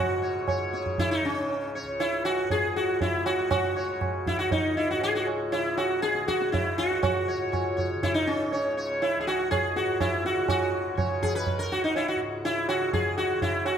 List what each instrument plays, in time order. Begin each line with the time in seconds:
Already playing: tanpura C#2 G#2 C#3, sitar F#4
0.22 sitar C#5
0.48 sitar C#5, tabla na, tabla ge
0.59 tanpura C#3
0.73 sitar C#5, tabla te
0.86 tabla ge
0.98 sitar E4, tabla tin, tabla ge
1.11 sitar D#4
1.20 tanpura C#3
1.25 sitar C#4
1.50 tabla tin
1.75 sitar C#5
1.83 tanpura C#2
2.00 sitar E4, tabla tin
2.25 sitar F#4, tabla na
2.44 tanpura G#2
2.50 sitar G#4, tabla tin, tabla ge
2.76 sitar F#4
3.01 sitar E4, tabla tin, tabla ge
3.06 tanpura C#3
3.26 sitar F#4, tabla na
3.51 sitar F#4, tabla na, tabla ge
3.67 tanpura C#3
3.76 sitar C#5
4.01 tabla na, tabla ge
4.27 tanpura C#2, sitar E4, tabla ge
4.39 sitar F#4
4.51 sitar D#4, tabla tin, tabla ge
4.77 sitar E4
4.91 tanpura G#2, sitar F#4
5.01 sitar G#4, tabla tin
5.15 sitar F#4
5.27 tabla na
5.52 tanpura C#3, sitar E4, tabla tin
5.77 sitar F#4, tabla na
6.02 sitar G#4, tabla te
6.13 tanpura C#3, tabla te
6.28 sitar F#4, tabla ke
6.42 tabla te
6.52 sitar E4, tabla tin, tabla ge
6.74 tanpura C#2, sitar F#4
6.78 tabla na
7.03 sitar F#4, tabla na, tabla ge
7.28 sitar C#5
7.35 tanpura G#2
7.52 sitar C#5, tabla na, tabla ge
7.77 sitar C#5, tabla ge
7.95 tanpura C#3
8.03 sitar E4, tabla tin, tabla ge
8.14 sitar D#4
8.27 sitar C#4
8.52 tanpura C#3, sitar C#5, tabla tin
8.77 sitar C#5
9.02 sitar E4, tabla tin
9.16 tanpura C#2
9.21 sitar G#4
9.27 sitar F#4, tabla na
9.51 sitar G#4, tabla na, tabla ge
9.76 tanpura G#2, sitar F#4, tabla te
10.00 sitar E4, tabla na, tabla ge
10.25 sitar F#4, tabla te
10.35 tanpura C#3
10.48 sitar F#4, tabla na, tabla ge
10.95 tanpura C#3, sitar C#5, tabla na, tabla ge
11.23 sitar G#4, tabla ge
11.35 sitar B4
11.47 tabla tin, tabla ge
11.55 tanpura C#2, sitar A#4
11.72 sitar F#4
11.84 sitar D#4
11.96 sitar E4, tabla tin
12.08 sitar F#4
12.15 tanpura G#2
12.44 sitar E4, tabla tin
12.69 sitar F#4, tabla na
12.74 tanpura C#3
12.93 sitar G#4, tabla tin, tabla ge
13.18 sitar F#4
13.33 tanpura C#3
13.42 sitar E4, tabla tin, tabla ge
13.65 sitar F#4, tabla na